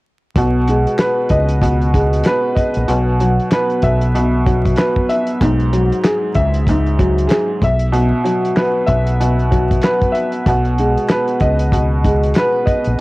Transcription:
0.36 B1 B2, kick, closed hi-hat
0.68 G#3, closed hi-hat
0.87 closed hi-hat
0.99 B4, snare, clap, closed hi-hat
1.29 C#2 D#5, kick, closed hi-hat
1.49 closed hi-hat
1.62 B2, kick, closed hi-hat
1.81 closed hi-hat
1.94 G#3, kick, closed hi-hat
2.13 closed hi-hat
2.24 B4, snare, clap, closed hi-hat
2.55 D#5, kick, closed hi-hat
2.74 A#1, closed hi-hat
2.88 B1 B2, closed hi-hat
3.20 F#3, closed hi-hat
3.40 closed hi-hat
3.51 B4, snare, clap, closed hi-hat
3.70 closed hi-hat
3.82 B1 E5, kick, closed hi-hat
4.01 closed hi-hat
4.15 B2, closed hi-hat
4.46 F#3, kick, closed hi-hat
4.66 kick, closed hi-hat
4.76 B4, snare, clap, closed hi-hat
4.96 kick
5.09 E5, closed hi-hat
5.27 closed hi-hat
5.41 B1 G#2, kick, closed hi-hat
5.60 closed hi-hat
5.73 F#3, closed hi-hat
5.92 closed hi-hat
6.04 G#4, snare, clap, closed hi-hat
6.35 C#2 E5, kick, closed hi-hat
6.54 closed hi-hat
6.67 G#2, kick, closed hi-hat
6.86 closed hi-hat
6.99 F#3, kick, closed hi-hat
7.18 closed hi-hat
7.27 G#4, snare, clap, closed hi-hat
7.62 B1 E5, kick, closed hi-hat
7.79 closed hi-hat
7.92 B2, closed hi-hat
8.24 F#3, closed hi-hat
8.45 closed hi-hat
8.57 B4, snare, clap, closed hi-hat
8.86 B1 E5, kick, closed hi-hat
9.07 closed hi-hat
9.20 B2, closed hi-hat
9.39 closed hi-hat
9.51 F#3, kick, closed hi-hat
9.71 kick, closed hi-hat
9.82 B4, snare, clap, closed hi-hat
10.02 kick, closed hi-hat
10.12 E5, closed hi-hat
10.32 closed hi-hat
10.46 B1 B2, kick, closed hi-hat
10.65 closed hi-hat
10.78 G#3, closed hi-hat
10.97 closed hi-hat
11.09 B4, snare, clap, closed hi-hat
11.28 closed hi-hat
11.40 C#2 D#5, kick, closed hi-hat
11.59 closed hi-hat
11.72 B2, kick, closed hi-hat
12.04 G#3, kick, closed hi-hat
12.23 closed hi-hat
12.34 B4, snare, clap, closed hi-hat
12.66 D#5, kick, closed hi-hat
12.84 A#1, closed hi-hat

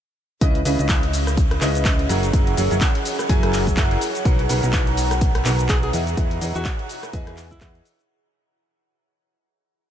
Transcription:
0.41 C#2 C#3 C#4 E4 G#4 B4 D#5, kick, closed hi-hat, shaker
0.55 closed hi-hat
0.65 C#2 C#3 C#4 E4 B4 D#5, open hi-hat, shaker
0.79 C#2 C#3 C#4 E4 B4 D#5, closed hi-hat, shaker
0.89 kick, clap, closed hi-hat, shaker
0.94 C#5 B5
1.03 closed hi-hat
1.13 open hi-hat, shaker
1.17 F#5
1.27 cross-stick, closed hi-hat, shaker
1.37 kick, closed hi-hat, shaker
1.51 cross-stick, closed hi-hat
1.61 C#2 C#3 C#4 E4 B4 D#5, clap, open hi-hat, shaker
1.75 closed hi-hat, shaker
1.85 kick, clap, closed hi-hat, shaker
1.99 closed hi-hat
2.09 F#1 F#3 E4 G#4 A#4 F#5, open hi-hat, shaker
2.23 closed hi-hat, shaker
2.33 F#1 F#3 E4 G#4 A#4 F#5, kick, closed hi-hat, shaker
2.47 closed hi-hat
2.57 F#1 F#3 E4 G#4 A#4 F#5, open hi-hat, shaker
2.71 F#1 F#3 E4 G#4 A#4 F#5, closed hi-hat, shaker
2.81 kick, clap, closed hi-hat, shaker
2.95 A#5, closed hi-hat
3.05 open hi-hat, shaker
3.19 cross-stick, closed hi-hat, shaker
3.29 F#1 F#3 E4 G#4 A#4 G#5, kick, closed hi-hat, shaker
3.43 cross-stick, closed hi-hat
3.53 clap, open hi-hat, shaker
3.67 kick, closed hi-hat, shaker
3.77 F#1 E4 G#4 A#4 F#5, kick, clap, closed hi-hat, shaker
3.91 closed hi-hat
4.01 open hi-hat, shaker
4.15 closed hi-hat, shaker
4.25 B1 B2 D#4 A#4 B4 F#5, kick, closed hi-hat, shaker
4.39 closed hi-hat
4.49 B1 B2 D#4 A#4 B4 F#5, open hi-hat, shaker
4.63 B1 B2 D#4 A#4 B4 F#5, closed hi-hat, shaker
4.73 kick, clap, closed hi-hat, shaker
4.87 closed hi-hat
4.97 open hi-hat, shaker
5.11 cross-stick, closed hi-hat, shaker
5.21 kick, closed hi-hat, shaker
5.35 cross-stick, closed hi-hat
5.45 B1 B2 D#4 A#4 B4 F#5, clap, open hi-hat, shaker
5.59 closed hi-hat, shaker
5.69 G#4, kick, clap, closed hi-hat, shaker
5.83 G#4, closed hi-hat
5.93 E2 E3 E4 G#4 D#5 F#5, open hi-hat, shaker
6.07 closed hi-hat, shaker
6.17 E2 E3 E4 G#4 D#5 F#5, kick, closed hi-hat, shaker
6.31 closed hi-hat
6.41 E2 E3 E4 G#4 D#5 F#5, open hi-hat, shaker
6.55 E2 E3 E4 F#4 G#4 D#5 F#5, closed hi-hat, shaker
6.65 kick, clap, closed hi-hat, shaker
6.79 closed hi-hat
6.89 open hi-hat, shaker
7.03 cross-stick, closed hi-hat, shaker
7.13 E2 E3 E4 G#4 D#5 G#5, kick, closed hi-hat, shaker
7.27 cross-stick, closed hi-hat
7.37 clap, open hi-hat, shaker
7.51 E4, kick, closed hi-hat, shaker
7.61 E2 E3 E4 G#4 D#5 F#5, kick, clap, closed hi-hat, shaker
7.75 closed hi-hat
7.85 open hi-hat, shaker
7.99 closed hi-hat, shaker

